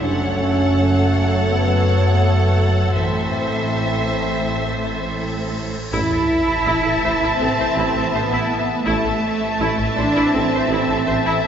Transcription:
0.01 double bass section F#1, cello section F#2, trombone section F#3 A3, french horn section C#4, viola section A4, violin section C#5 F#5
1.49 french horn section B3
2.96 double bass section A1, cello section A2, trombone section E3 C4, french horn section A3, violin section C5 E5, cymbal swell
5.93 tuba A1, double bass section A1, french horn section C3 E4, trombone section E3 A3, viola section E4, cello section E4, violin section E5 A5, sub drop
6.11 double bass section A1, viola section A4
6.66 tuba A1, double bass section A1, viola section E4
6.84 double bass section A1, viola section A4
7.03 tuba A1, double bass section A1, viola section C5
7.22 double bass section A1, viola section E4
7.39 tuba A1, double bass section A1, cello section C4, viola section A4
7.59 double bass section A1, viola section C5
7.76 tuba A1, double bass section A1, viola section E4
7.95 double bass section A1, viola section A4
8.13 tuba A1, double bass section A1, cello section B3, viola section C5
8.32 double bass section A1, viola section E4
8.85 tuba A1, double bass section A1, trombone section E3 A3, cello section A3, french horn section C4 E4, viola section E4, violin section E5 A5
9.05 double bass section A1, viola section A4
9.60 tuba A1, double bass section A1, viola section E4
9.78 double bass section A1, viola section A4
9.96 tuba A1, double bass section A1, cello section D4, viola section C5
10.16 double bass section A1, viola section E4
10.33 tuba A1, double bass section A1, cello section C4, viola section A4
10.52 double bass section A1, viola section C5
10.69 tuba A1, double bass section A1, viola section E4
10.88 double bass section A1, viola section A4
11.06 tuba A1, double bass section A1, viola section C5
11.25 double bass section A1, viola section E4

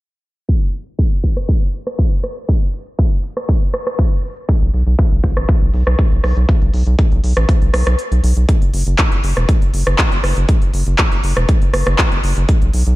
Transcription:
0.49 kick
0.74 open hi-hat
0.87 closed hi-hat
0.99 kick
1.24 kick
1.37 cross-stick
1.49 kick
1.74 open hi-hat
1.87 cross-stick
1.99 kick
2.24 cross-stick, open hi-hat
2.37 closed hi-hat
2.49 kick
2.62 closed hi-hat
2.74 open hi-hat
2.87 closed hi-hat
2.99 kick, closed hi-hat
3.12 closed hi-hat
3.24 open hi-hat
3.37 cross-stick, closed hi-hat
3.49 kick, closed hi-hat
3.62 closed hi-hat
3.74 cross-stick, open hi-hat
3.87 cross-stick
3.99 kick, closed hi-hat
4.12 closed hi-hat
4.24 open hi-hat
4.37 closed hi-hat
4.49 kick, closed hi-hat
4.62 analog synth bass B1, closed hi-hat
4.74 analog synth bass B1, open hi-hat
4.87 analog synth bass B1, closed hi-hat
4.99 kick, closed hi-hat
5.12 analog synth bass B1, closed hi-hat
5.24 analog synth bass B1, kick, open hi-hat
5.37 analog synth bass A1, cross-stick, closed hi-hat
5.49 kick, closed hi-hat
5.62 analog synth bass B1, closed hi-hat
5.74 analog synth bass B1, open hi-hat
5.87 analog synth bass B1, cross-stick
5.99 kick, closed hi-hat
6.12 analog synth bass B1, closed hi-hat
6.24 analog synth bass B1, cross-stick, open hi-hat
6.37 analog synth bass B1, closed hi-hat
6.49 kick, closed hi-hat
6.62 analog synth bass B1, closed hi-hat
6.74 analog synth bass B1, open hi-hat
6.87 analog synth bass B1, closed hi-hat
6.99 kick, closed hi-hat
7.12 analog synth bass B1, closed hi-hat
7.24 analog synth bass B1, open hi-hat
7.37 analog synth bass A1, cross-stick
7.49 kick, closed hi-hat
7.62 analog synth bass B1, closed hi-hat
7.74 analog synth bass B1, cross-stick, open hi-hat
7.87 analog synth bass B1, cross-stick, closed hi-hat
7.99 closed hi-hat
8.12 analog synth bass B1, closed hi-hat
8.24 analog synth bass B1, open hi-hat
8.37 analog synth bass B1, closed hi-hat
8.49 kick, closed hi-hat
8.62 analog synth bass F#1, closed hi-hat
8.74 analog synth bass F#1, open hi-hat
8.87 analog synth bass F#1, closed hi-hat
8.98 kick, clap, closed hi-hat
9.12 analog synth bass F#1, closed hi-hat
9.24 analog synth bass F#1, open hi-hat
9.37 analog synth bass E1, cross-stick
9.49 kick, closed hi-hat
9.62 analog synth bass F#1, closed hi-hat
9.74 analog synth bass F#1, open hi-hat
9.87 analog synth bass F#1, cross-stick
9.98 kick, clap, closed hi-hat
10.12 analog synth bass F#1, closed hi-hat
10.24 analog synth bass F#1, cross-stick, open hi-hat
10.37 analog synth bass F#1, closed hi-hat
10.49 kick, closed hi-hat
10.62 analog synth bass F#1, closed hi-hat
10.74 analog synth bass F#1, open hi-hat
10.87 analog synth bass F#1, closed hi-hat
10.98 kick, clap, closed hi-hat
11.12 analog synth bass F#1, closed hi-hat
11.24 analog synth bass F#1, open hi-hat
11.37 analog synth bass E1, cross-stick
11.49 kick, closed hi-hat
11.62 analog synth bass F#1, closed hi-hat
11.74 analog synth bass F#1, cross-stick, open hi-hat
11.87 analog synth bass F#1, cross-stick
11.98 kick, clap, closed hi-hat
12.12 analog synth bass F#1, closed hi-hat
12.24 analog synth bass F#1, open hi-hat
12.37 analog synth bass F#1, closed hi-hat
12.49 kick, closed hi-hat
12.62 analog synth bass B1, closed hi-hat
12.74 analog synth bass B1, open hi-hat
12.87 analog synth bass B1, closed hi-hat

